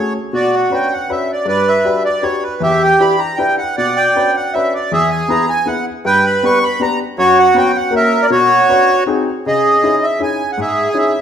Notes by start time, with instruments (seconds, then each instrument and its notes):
Already playing: upright piano A3 C#4 F#4 G#4, accordion C#5
0.33 upright piano B2, accordion F#4 D5
0.55 accordion F#5
0.70 upright piano C#4 D4 F#4 B4, accordion G5
0.93 accordion F#5
1.08 upright piano C#4 D4 F#4 B4, accordion E5
1.32 accordion D5
1.45 upright piano G2, accordion B4 D5
1.68 accordion E5
1.84 upright piano D4 F#4 G4 B4
2.05 accordion D5
2.22 upright piano D4 F#4 G4 B4, accordion C#5
2.43 accordion B4
2.60 upright piano E2, accordion G4 E5
2.83 accordion G5
3.00 upright piano D4 E4 G4 B4, accordion B5
3.18 accordion A#5
3.36 upright piano D4 E4 G4 B4, accordion G5
3.58 accordion F#5
3.77 upright piano B2, accordion D5 F#5
3.97 accordion G5
4.15 upright piano C#4 D4 F#4 B4
4.36 accordion F#5
4.54 upright piano C#4 D4 F#4 B4, accordion E5
4.74 accordion D5
4.92 upright piano E2, accordion G#4 E5
5.10 accordion G#5
5.28 upright piano B3 E4 G#4 B4, accordion A#5
5.49 accordion G#5
5.66 upright piano B3 E4 G#4 B4, accordion F#5
6.05 upright piano G2, accordion B4 G5
6.26 accordion B5
6.43 upright piano B3 D4 G4 B4, accordion C#6
6.63 accordion B5
6.80 upright piano B3 D4 G4 B4, accordion A#5
7.18 upright piano F#2, accordion F#4 C#5
7.39 accordion F#5
7.54 upright piano B3 C#4 F#4 B4, accordion G5
7.76 accordion F#5
7.91 upright piano A#3 C#4 F#4 A#4
7.96 accordion A#4 E5
8.22 accordion D5
8.30 upright piano B2, accordion F#4 C#5
8.68 upright piano C#4 D4 F#4 B4
9.07 upright piano C4 D#4 F#4 G#4
9.46 upright piano C#3, accordion G#4 D#5
9.83 upright piano C#4 D#4 E4 G#4
10.03 accordion E5
10.19 upright piano C#4 D#4 E4 G#4, accordion G#5
10.52 accordion F#5
10.58 upright piano G#2, accordion G#4 E5
10.89 accordion G#5
10.94 upright piano C#4 D#4 E4 G#4
10.98 accordion E5